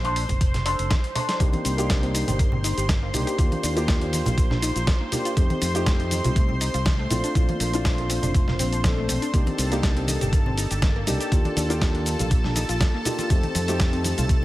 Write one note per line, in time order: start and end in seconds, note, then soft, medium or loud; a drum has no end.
0.00 0.24 A#1 loud
0.00 1.39 C5 medium
0.00 1.39 C6 medium
0.04 0.23 D4 medium
0.04 0.23 A4 medium
0.04 0.23 C5 medium
0.04 closed hi-hat soft
0.16 open hi-hat loud
0.29 0.74 F1 medium
0.29 kick medium
0.29 closed hi-hat medium
0.29 low conga medium
0.41 muted clean electric guitar stroke soft
0.41 kick loud
0.41 closed hi-hat medium
0.54 snare soft
0.54 closed hi-hat soft
0.54 low conga medium
0.66 0.90 D4 medium
0.66 0.91 A4 medium
0.66 0.91 C5 loud
0.66 open hi-hat loud
0.79 0.88 F1 medium
0.79 closed hi-hat medium
0.90 kick loud
0.90 snare loud
0.90 closed hi-hat medium
0.90 high conga medium
1.04 closed hi-hat soft
1.15 1.40 D4 medium
1.15 1.40 A4 medium
1.15 1.40 C5 medium
1.15 open hi-hat loud
1.15 low conga medium
1.29 snare medium
1.29 closed hi-hat medium
1.40 1.50 C2 medium
1.40 1.75 A#3 medium
1.40 1.49 A#3 medium
1.40 1.75 D4 medium
1.40 1.75 D#4 medium
1.40 1.75 G4 medium
1.40 9.35 C5 medium
1.40 9.35 C6 medium
1.40 kick loud
1.40 closed hi-hat medium
1.40 shaker soft
1.53 1.61 C4 medium
1.53 closed hi-hat soft
1.53 high conga medium
1.65 2.23 C2 loud
1.65 1.74 C4 medium
1.65 open hi-hat loud
1.65 shaker medium
1.77 3.10 A#3 medium
1.77 3.11 D4 medium
1.77 3.11 D#4 medium
1.77 1.86 G4 medium
1.77 3.11 G4 loud
1.77 closed hi-hat medium
1.77 shaker soft
1.90 1.95 A#3 medium
1.90 kick loud
1.90 snare loud
1.90 closed hi-hat medium
1.90 shaker soft
2.03 2.10 C4 medium
2.03 closed hi-hat soft
2.15 2.27 D#4 medium
2.15 open hi-hat loud
2.15 shaker medium
2.28 2.72 G1 medium
2.28 2.35 G4 medium
2.28 closed hi-hat medium
2.28 low conga medium
2.28 shaker soft
2.39 2.48 A#3 medium
2.39 kick loud
2.39 closed hi-hat medium
2.39 shaker soft
2.52 2.60 C4 medium
2.52 low conga medium
2.64 2.77 D#4 loud
2.64 open hi-hat loud
2.64 shaker medium
2.78 3.09 G1 medium
2.78 2.85 G4 medium
2.78 closed hi-hat medium
2.78 shaker soft
2.89 2.94 A#3 medium
2.89 kick loud
2.89 snare loud
2.89 closed hi-hat medium
2.89 high conga medium
2.89 shaker soft
3.02 3.13 A#3 loud
3.13 3.24 C2 medium
3.13 3.35 A#3 medium
3.13 3.35 D4 medium
3.13 3.27 D#4 medium
3.13 3.35 D#4 medium
3.13 3.35 G4 medium
3.13 open hi-hat loud
3.13 low conga medium
3.13 shaker medium
3.27 3.31 G4 loud
3.27 closed hi-hat medium
3.27 shaker soft
3.38 3.48 D#2 loud
3.38 3.73 A#3 medium
3.38 3.47 A#3 medium
3.38 3.73 D4 medium
3.38 3.74 F4 medium
3.38 3.74 G4 medium
3.38 kick loud
3.38 closed hi-hat medium
3.38 shaker soft
3.52 3.59 D4 medium
3.52 closed hi-hat soft
3.52 high conga medium
3.63 4.21 D#2 loud
3.63 3.72 D4 medium
3.63 open hi-hat loud
3.63 shaker medium
3.75 5.09 A#3 loud
3.75 5.09 D4 medium
3.75 5.09 F4 medium
3.75 3.84 F4 medium
3.75 5.10 G4 loud
3.75 closed hi-hat soft
3.75 shaker soft
3.88 3.93 A#3 medium
3.88 kick loud
3.88 snare loud
3.88 open hi-hat medium
3.88 shaker soft
4.01 4.09 D4 medium
4.01 closed hi-hat soft
4.13 4.26 D#4 medium
4.13 open hi-hat loud
4.13 high conga medium
4.13 shaker medium
4.26 4.71 A#1 loud
4.26 4.34 F4 medium
4.26 closed hi-hat medium
4.26 low conga loud
4.26 shaker soft
4.38 4.46 A#3 medium
4.38 kick loud
4.38 closed hi-hat medium
4.38 shaker soft
4.51 4.59 D4 medium
4.51 snare soft
4.51 low conga medium
4.62 4.75 D#4 loud
4.62 open hi-hat loud
4.62 shaker medium
4.76 4.84 A#1 medium
4.76 4.83 F4 medium
4.76 closed hi-hat medium
4.76 shaker soft
4.87 4.93 A#3 medium
4.87 kick loud
4.87 snare loud
4.87 closed hi-hat medium
4.87 high conga medium
4.87 shaker soft
5.01 5.12 A#3 loud
5.12 5.33 A#3 medium
5.12 5.33 D4 medium
5.12 5.25 D#4 medium
5.12 5.34 F4 medium
5.12 5.34 G4 medium
5.12 open hi-hat loud
5.12 low conga medium
5.12 shaker medium
5.25 5.30 F4 loud
5.25 closed hi-hat medium
5.25 shaker soft
5.36 5.47 F2 medium
5.36 5.72 A3 medium
5.36 5.46 A3 medium
5.36 5.72 C4 medium
5.36 5.72 D#4 medium
5.36 5.72 G4 medium
5.36 kick loud
5.36 closed hi-hat medium
5.36 shaker soft
5.50 5.58 C4 medium
5.50 closed hi-hat soft
5.50 high conga loud
5.62 6.19 F2 loud
5.62 5.70 C4 medium
5.62 open hi-hat loud
5.62 shaker medium
5.74 7.07 A3 medium
5.74 7.07 C4 medium
5.74 7.08 D#4 medium
5.74 5.82 F4 medium
5.74 7.08 G4 loud
5.74 closed hi-hat soft
5.74 shaker soft
5.86 5.92 A3 medium
5.86 kick loud
5.86 snare loud
5.86 closed hi-hat medium
5.86 shaker soft
6.00 6.07 C4 medium
6.00 closed hi-hat soft
6.11 6.24 D#4 medium
6.11 open hi-hat loud
6.11 high conga medium
6.11 shaker medium
6.24 6.69 C2 medium
6.24 6.32 F4 medium
6.24 closed hi-hat medium
6.24 low conga loud
6.24 shaker soft
6.36 6.45 A3 medium
6.36 kick loud
6.36 closed hi-hat medium
6.36 shaker soft
6.49 6.57 C4 medium
6.49 low conga medium
6.61 6.74 D#4 loud
6.61 open hi-hat loud
6.61 shaker medium
6.74 7.06 C2 medium
6.74 6.82 F4 medium
6.74 closed hi-hat soft
6.74 shaker soft
6.85 6.91 A3 medium
6.85 kick loud
6.85 snare loud
6.85 closed hi-hat medium
6.85 high conga medium
6.85 shaker soft
6.99 7.10 A3 loud
7.10 7.20 A#1 medium
7.10 7.32 A3 medium
7.10 7.32 C4 medium
7.10 7.23 C4 medium
7.10 7.32 D4 medium
7.10 7.32 F4 medium
7.10 open hi-hat loud
7.10 low conga medium
7.10 shaker medium
7.24 7.28 D4 loud
7.24 closed hi-hat soft
7.24 shaker soft
7.35 7.45 A#1 loud
7.35 7.70 A3 medium
7.35 7.44 A3 medium
7.35 7.70 C4 medium
7.35 7.70 D4 medium
7.35 7.71 F4 medium
7.35 kick loud
7.35 closed hi-hat medium
7.35 shaker soft
7.49 7.56 A#3 medium
7.49 closed hi-hat soft
7.49 high conga medium
7.60 8.18 A#1 loud
7.60 7.69 A#3 medium
7.60 open hi-hat loud
7.60 shaker medium
7.73 8.81 A3 loud
7.73 8.82 C4 medium
7.73 7.81 D4 medium
7.73 8.82 D4 medium
7.73 8.82 F4 loud
7.73 closed hi-hat soft
7.73 shaker soft
7.85 7.90 A3 medium
7.85 kick loud
7.85 snare loud
7.85 open hi-hat medium
7.85 shaker soft
7.98 8.06 A#3 medium
7.98 closed hi-hat soft
8.10 8.23 C4 medium
8.10 open hi-hat loud
8.10 shaker medium
8.23 8.59 F1 medium
8.23 8.31 D4 medium
8.23 closed hi-hat soft
8.23 low conga medium
8.23 shaker soft
8.35 8.43 A3 medium
8.35 kick loud
8.35 closed hi-hat medium
8.35 shaker soft
8.48 8.55 A#3 medium
8.48 snare soft
8.48 low conga medium
8.59 9.17 A#1 loud
8.59 8.72 C4 loud
8.59 open hi-hat loud
8.59 shaker medium
8.72 8.80 D4 medium
8.72 closed hi-hat soft
8.72 shaker soft
8.84 9.31 A3 medium
8.84 8.89 A3 medium
8.84 9.31 C4 medium
8.84 9.31 D4 medium
8.84 9.31 A4 medium
8.84 kick loud
8.84 snare loud
8.84 closed hi-hat medium
8.84 high conga medium
8.84 shaker soft
8.97 9.08 A3 loud
9.09 9.21 C4 medium
9.09 open hi-hat loud
9.09 low conga medium
9.09 shaker medium
9.22 9.27 D4 loud
9.22 closed hi-hat soft
9.22 shaker soft
9.33 9.44 C2 medium
9.33 9.68 A#3 medium
9.33 9.42 A#3 medium
9.33 9.68 D4 medium
9.33 9.69 D#4 medium
9.33 9.69 G4 medium
9.33 14.45 A4 medium
9.33 14.45 A5 medium
9.33 kick loud
9.33 closed hi-hat medium
9.33 shaker soft
9.47 9.54 C4 medium
9.47 closed hi-hat soft
9.47 high conga medium
9.58 10.16 C2 loud
9.58 9.67 C4 medium
9.58 open hi-hat loud
9.58 muted conga soft
9.58 shaker medium
9.71 11.04 A#3 loud
9.71 9.82 A#3 medium
9.71 11.04 D4 medium
9.71 11.05 D#4 medium
9.71 11.05 G4 loud
9.71 closed hi-hat soft
9.71 shaker soft
9.83 9.89 A#3 medium
9.83 kick loud
9.83 snare loud
9.83 closed hi-hat medium
9.83 shaker soft
9.97 10.04 C4 medium
9.97 closed hi-hat soft
10.08 10.21 D#4 medium
10.08 open hi-hat loud
10.08 high conga medium
10.08 shaker medium
10.21 10.66 G1 medium
10.21 10.29 G4 medium
10.21 closed hi-hat medium
10.21 low conga medium
10.21 shaker soft
10.33 10.42 A#3 medium
10.33 kick loud
10.33 closed hi-hat medium
10.33 shaker soft
10.46 10.54 C4 medium
10.46 low conga medium
10.58 10.70 D#4 loud
10.58 open hi-hat loud
10.58 shaker medium
10.71 11.03 G1 medium
10.71 10.78 G4 medium
10.71 closed hi-hat soft
10.71 shaker soft
10.82 10.88 A#3 medium
10.82 kick loud
10.82 snare loud
10.82 closed hi-hat medium
10.82 high conga medium
10.82 shaker soft
10.96 11.07 A#3 loud
11.07 11.17 C2 medium
11.07 11.28 A#3 medium
11.07 11.28 D4 medium
11.07 11.20 D#4 medium
11.07 11.29 D#4 medium
11.07 11.29 G4 medium
11.07 open hi-hat loud
11.07 low conga medium
11.07 shaker medium
11.20 11.25 G4 loud
11.20 closed hi-hat soft
11.20 shaker soft
11.31 11.42 D#2 medium
11.31 11.67 A#3 medium
11.31 11.41 A#3 medium
11.31 11.67 D4 medium
11.31 11.67 F4 medium
11.31 11.67 G4 medium
11.31 kick loud
11.31 closed hi-hat medium
11.31 shaker soft
11.45 11.53 D4 medium
11.45 closed hi-hat soft
11.45 high conga medium
11.57 12.14 D#2 loud
11.57 11.65 D4 medium
11.57 open hi-hat loud
11.57 muted conga soft
11.57 shaker medium
11.69 13.02 A#3 loud
11.69 11.80 A#3 loud
11.69 13.03 D4 medium
11.69 13.03 F4 medium
11.69 13.03 G4 loud
11.69 closed hi-hat soft
11.69 shaker soft
11.81 11.87 A#3 medium
11.81 kick loud
11.81 snare loud
11.81 open hi-hat medium
11.81 shaker soft
11.95 12.02 D4 medium
11.95 closed hi-hat soft
12.06 12.19 D#4 medium
12.06 open hi-hat loud
12.06 shaker medium
12.19 12.64 A#1 medium
12.19 12.27 F4 medium
12.19 closed hi-hat medium
12.19 low conga medium
12.19 shaker soft
12.31 12.40 A#3 medium
12.31 kick loud
12.31 closed hi-hat medium
12.31 shaker soft
12.44 12.52 D4 medium
12.44 snare soft
12.44 low conga medium
12.56 12.69 D#4 loud
12.56 open hi-hat loud
12.56 muted conga medium
12.56 shaker medium
12.69 12.78 A#1 medium
12.69 12.77 F4 medium
12.69 closed hi-hat soft
12.69 shaker soft
12.80 12.86 A#3 medium
12.80 kick loud
12.80 snare loud
12.80 closed hi-hat medium
12.80 high conga medium
12.80 shaker soft
12.94 13.05 A#3 loud
13.05 13.27 A#3 medium
13.05 13.27 D4 medium
13.05 13.18 D#4 medium
13.05 13.27 F4 medium
13.05 13.27 G4 medium
13.05 open hi-hat loud
13.05 low conga medium
13.05 shaker medium
13.19 13.23 F4 loud
13.19 closed hi-hat soft
13.19 muted conga medium
13.19 shaker soft
13.30 13.40 F2 loud
13.30 13.65 A3 medium
13.30 13.39 A3 medium
13.30 13.65 C4 medium
13.30 13.65 D#4 medium
13.30 13.65 G4 medium
13.30 kick loud
13.30 closed hi-hat medium
13.30 shaker soft
13.43 13.51 C4 medium
13.43 closed hi-hat soft
13.43 high conga medium
13.55 14.13 F2 loud
13.55 13.64 C4 medium
13.55 open hi-hat medium
13.55 muted conga medium
13.55 shaker medium
13.67 14.45 A3 loud
13.67 13.79 A3 medium
13.67 14.45 C4 medium
13.67 14.45 D#4 medium
13.67 14.45 G4 loud
13.67 closed hi-hat medium
13.67 shaker soft
13.80 kick loud
13.80 snare loud
13.80 closed hi-hat medium
13.80 shaker soft
13.93 14.01 C4 medium
13.93 closed hi-hat soft
14.04 14.17 D#4 medium
14.04 open hi-hat loud
14.04 high conga medium
14.04 shaker medium
14.18 14.45 C2 loud
14.18 14.25 F4 medium
14.18 closed hi-hat medium
14.18 low conga medium
14.18 shaker soft
14.29 14.38 A3 medium
14.29 kick loud
14.29 closed hi-hat medium
14.29 shaker soft